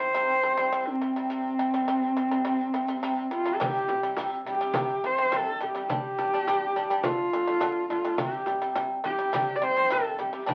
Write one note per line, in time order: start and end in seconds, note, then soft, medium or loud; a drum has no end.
0.00 0.12 C3 medium
0.00 0.12 G3 medium
0.00 0.89 C5 loud
0.14 0.38 C3 medium
0.14 0.38 G3 medium
0.43 0.55 C3 medium
0.43 0.55 G3 medium
0.57 0.69 C3 medium
0.57 0.69 G3 medium
0.72 0.95 C3 medium
0.72 0.95 G3 medium
0.88 3.32 C4 medium
1.01 1.13 C3 medium
1.01 1.13 G3 medium
1.16 1.27 C3 medium
1.16 1.27 G3 medium
1.30 1.53 C3 medium
1.30 1.53 G3 medium
1.59 1.71 C3 medium
1.59 1.70 G3 medium
1.74 1.85 C3 medium
1.74 1.85 G3 medium
1.88 2.11 C3 medium
1.88 2.11 G3 medium
2.17 2.28 C3 medium
2.17 2.28 G3 medium
2.31 2.43 C3 medium
2.31 2.42 G3 medium
2.45 2.68 C3 medium
2.45 2.68 G3 medium
2.74 2.85 C3 medium
2.74 2.85 G3 medium
2.88 3.00 C3 medium
2.88 3.00 G3 medium
3.03 3.26 C3 medium
3.03 3.26 G3 medium
3.31 3.43 C3 medium
3.31 3.43 G3 medium
3.31 3.56 F4 medium
3.46 3.57 C3 medium
3.46 3.57 G3 medium
3.54 3.63 A4 medium
3.60 3.83 C3 medium
3.60 3.83 G3 medium
3.60 4.18 G4 loud
3.60 frame drum medium
3.88 4.00 C3 medium
3.88 4.00 G3 medium
3.88 frame drum medium
4.03 4.15 C3 medium
4.03 4.15 G3 medium
4.17 4.41 C3 medium
4.17 4.41 G3 medium
4.17 frame drum medium
4.45 4.58 C3 medium
4.45 4.58 G3 medium
4.45 frame drum soft
4.50 5.07 G4 loud
4.61 4.72 C3 medium
4.61 4.72 G3 medium
4.74 4.98 C3 medium
4.74 4.98 G3 medium
4.74 frame drum medium
5.04 5.15 C3 medium
5.04 5.15 G3 medium
5.04 5.38 C5 loud
5.04 frame drum soft
5.18 5.30 C3 medium
5.18 5.30 G3 medium
5.32 5.55 C3 medium
5.32 5.55 G3 medium
5.32 frame drum medium
5.36 5.64 A4 loud
5.60 5.72 C3 medium
5.60 5.72 G3 medium
5.60 5.90 G4 medium
5.60 frame drum soft
5.75 5.87 C3 medium
5.75 5.87 G3 medium
5.90 6.13 G3 medium
5.90 6.13 D4 medium
5.90 7.06 G4 loud
5.90 frame drum medium
6.18 6.30 G3 medium
6.18 6.30 D4 medium
6.18 frame drum medium
6.34 6.45 G3 medium
6.34 6.45 D4 medium
6.47 6.70 G3 loud
6.47 6.70 D4 medium
6.47 frame drum medium
6.76 6.87 G3 medium
6.76 6.87 D4 medium
6.76 frame drum soft
6.90 7.02 G3 medium
6.90 7.02 D4 medium
7.03 7.27 D3 medium
7.03 7.27 A3 medium
7.03 7.90 F4 loud
7.03 frame drum medium
7.33 7.45 D3 medium
7.33 7.45 A3 medium
7.33 frame drum soft
7.47 7.59 D3 medium
7.47 7.59 A3 medium
7.61 7.84 D3 loud
7.61 7.84 A3 medium
7.61 frame drum medium
7.90 8.02 D3 medium
7.90 8.02 A3 medium
7.90 8.20 F4 medium
7.90 frame drum soft
8.05 8.16 D3 medium
8.05 8.16 A3 medium
8.18 8.42 C3 loud
8.18 8.41 G3 medium
8.18 8.76 G4 loud
8.18 frame drum medium
8.46 8.59 C3 medium
8.46 8.59 G3 medium
8.46 frame drum soft
8.62 8.73 C3 medium
8.62 8.73 G3 medium
8.75 8.99 C3 loud
8.75 8.99 G3 medium
8.75 frame drum medium
9.04 9.16 C3 medium
9.04 9.16 G3 medium
9.04 9.57 G4 loud
9.04 frame drum soft
9.19 9.30 C3 medium
9.19 9.30 G3 medium
9.33 9.56 C3 loud
9.33 9.56 G3 loud
9.33 frame drum medium
9.56 9.65 D5 medium
9.62 9.73 C3 medium
9.62 9.73 G3 medium
9.62 9.94 C5 loud
9.62 frame drum soft
9.77 9.88 C3 medium
9.77 9.88 G3 medium
9.90 10.13 C3 loud
9.90 10.13 G3 medium
9.90 10.21 A4 medium
9.90 frame drum medium
10.19 10.30 C3 medium
10.19 10.31 G3 medium
10.19 10.48 G4 medium
10.19 frame drum soft
10.33 10.45 C3 medium
10.33 10.45 G3 medium
10.46 10.54 G3 medium
10.46 10.54 D4 medium
10.46 10.54 G4 loud
10.46 frame drum medium